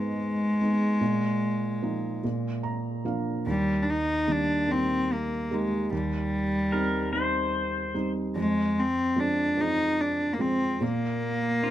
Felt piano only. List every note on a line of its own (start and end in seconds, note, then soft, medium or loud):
0.00 0.97 G#2 medium
0.00 0.62 G#3 soft
0.00 0.62 B3 soft
0.00 0.62 D#4 soft
0.62 1.01 G#3 soft
0.62 1.01 B3 soft
0.62 1.01 D#4 soft
1.01 2.20 A#2 medium
1.82 2.22 F3 soft
1.82 2.23 A#3 soft
1.82 2.23 D#4 soft
2.24 3.43 A#2 medium
2.63 3.02 A#5 medium
3.05 3.45 F3 soft
3.05 3.46 A#3 soft
3.05 3.45 D4 soft
3.05 3.44 F5 medium
3.47 5.88 D#2 medium
4.27 5.08 D#3 soft
4.27 4.67 G3 soft
4.27 4.67 A#3 soft
4.68 5.48 G3 soft
4.68 5.49 A#3 soft
4.68 5.49 D#4 soft
5.51 5.91 A#3 soft
5.51 5.91 D#4 soft
5.51 5.91 G4 soft
5.92 8.33 D#2 medium
6.73 7.12 G3 soft
6.73 7.12 C4 soft
6.73 7.12 D#4 soft
7.13 7.93 G3 soft
7.13 7.93 C4 soft
7.13 7.93 D#4 soft
7.94 8.35 G3 soft
7.94 8.35 C4 soft
7.94 8.35 D#4 medium
8.36 10.77 F2 medium
9.16 9.56 F3 soft
9.16 9.56 G#3 soft
9.16 9.56 C4 soft
9.57 10.37 F3 soft
9.57 10.38 G#3 soft
9.57 10.38 C4 soft
10.39 10.80 F3 soft
10.39 10.80 G#3 soft
10.39 10.80 C4 medium
10.81 11.71 A#2 medium
11.62 11.71 A#3 soft
11.62 11.71 C4 soft
11.62 11.71 D4 soft